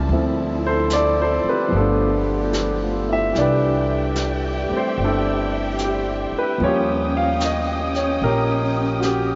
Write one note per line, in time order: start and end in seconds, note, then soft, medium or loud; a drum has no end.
0.00 0.12 G3 medium
0.00 0.10 A#3 medium
0.00 0.11 C#4 soft
0.00 0.11 E4 medium
0.00 0.11 G4 medium
0.00 0.11 A#4 medium
0.09 1.40 D2 medium
0.09 1.71 D3 medium
0.09 3.32 F3 medium
0.09 1.67 F3 soft
0.09 1.71 A3 soft
0.09 1.71 C4 medium
0.09 1.71 E4 medium
0.09 brush sweep soft
0.13 1.74 C4 soft
0.13 1.74 E4 medium
0.67 0.92 A4 medium
0.67 0.93 C5 medium
0.90 1.20 D5 medium
0.90 snare soft
0.90 hi-hat pedal soft
0.96 1.19 A4 medium
1.22 1.46 A4 medium
1.22 1.48 C5 medium
1.44 muted upright bass stroke soft
1.49 1.73 G4 soft
1.49 1.75 B4 medium
1.69 3.31 G1 medium
1.69 3.33 F3 medium
1.69 3.35 A3 soft
1.69 3.33 B3 medium
1.69 brush sweep soft
1.73 3.34 A3 medium
1.73 3.37 B3 soft
1.73 3.33 G4 medium
1.73 3.06 A4 medium
1.78 3.36 D4 medium
1.78 2.81 F4 soft
2.53 3.05 G4 soft
2.53 snare soft
2.53 hi-hat pedal soft
2.83 3.24 F4 soft
3.08 3.50 E4 soft
3.13 3.36 E5 medium
3.32 4.66 C2 medium
3.32 6.59 E3 soft
3.32 4.68 G3 soft
3.32 6.56 G4 medium
3.32 6.56 D5 medium
3.32 6.56 E5 medium
3.32 6.56 G5 medium
3.32 brush sweep soft
3.32 snare soft
3.38 5.03 D4 medium
3.38 4.96 G4 medium
3.38 4.97 B4 medium
3.38 4.14 D5 medium
4.16 snare soft
4.16 hi-hat pedal soft
4.69 6.59 G3 soft
4.69 6.60 A3 soft
4.69 6.61 C4 soft
4.69 muted upright bass stroke soft
4.77 4.99 C5 medium
4.98 6.29 G1 medium
4.98 brush sweep soft
5.04 6.59 D4 soft
5.04 6.59 E4 soft
5.04 5.84 A4 medium
5.79 snare soft
5.79 hi-hat pedal soft
5.85 6.32 G4 medium
6.32 muted upright bass stroke soft
6.39 6.63 B4 medium
6.58 8.18 D#2 medium
6.58 9.35 F3 soft
6.58 9.35 G3 soft
6.58 9.35 A#3 soft
6.58 9.35 C#4 medium
6.58 9.35 G5 medium
6.58 9.35 D#6 medium
6.58 brush sweep soft
6.63 8.24 C#4 medium
6.63 8.21 F4 medium
6.63 8.21 G4 medium
6.63 7.12 C#5 medium
7.17 7.43 F5 medium
7.40 snare soft
7.40 hi-hat pedal soft
7.45 7.93 D#5 medium
7.95 8.21 C#5 medium
7.95 snare soft
8.22 9.35 A#1 medium
8.22 9.03 G4 medium
8.22 9.01 A#4 medium
8.22 brush sweep soft
8.26 9.35 C#4 medium
9.00 9.04 F#4 medium
9.00 snare soft
9.00 hi-hat pedal soft
9.05 9.35 G4 medium